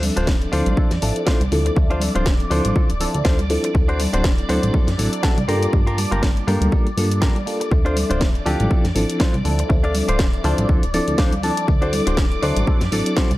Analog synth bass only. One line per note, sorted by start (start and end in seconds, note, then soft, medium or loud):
0.00 0.11 D2 loud
0.17 0.48 D1 loud
0.53 0.63 D2 medium
0.67 0.75 A1 loud
0.92 0.99 F2 medium
1.02 1.12 A1 medium
1.41 1.49 C2 loud
1.52 1.71 D2 medium
1.77 2.09 D2 medium
2.16 2.46 D1 loud
2.51 2.61 D2 medium
2.65 2.73 A1 loud
2.76 2.86 D2 medium
2.90 3.07 D1 medium
3.15 3.23 D2 medium
3.25 3.58 D2 medium
3.75 4.08 D2 medium
4.14 4.45 D1 loud
4.49 4.60 D2 medium
4.63 4.71 A1 loud
4.88 4.96 F#2 medium
4.99 5.09 A1 medium
5.38 5.46 C2 loud
5.48 5.67 G2 medium
5.73 6.06 G2 medium
6.12 6.43 G1 loud
6.48 6.58 G2 medium
6.62 6.70 D2 loud
6.97 7.30 G2 medium
7.72 8.04 D2 medium
8.10 8.41 D1 loud
8.46 8.56 D2 medium
8.60 8.68 A1 loud
8.85 8.93 F2 medium
8.96 9.06 A1 medium
9.34 9.42 C2 loud
9.45 9.64 D2 medium
9.70 10.03 D2 medium
10.09 10.40 D1 loud
10.44 10.55 D2 medium
10.58 10.66 A1 loud
10.69 10.79 D2 medium
10.83 11.00 D1 medium
11.08 11.16 D2 medium
11.19 11.51 D2 medium
11.68 12.01 D2 loud
12.07 12.38 D1 loud
12.43 12.53 D2 medium
12.57 12.65 A1 loud
12.81 12.89 F#2 medium
12.92 13.02 A1 medium
13.31 13.38 C2 loud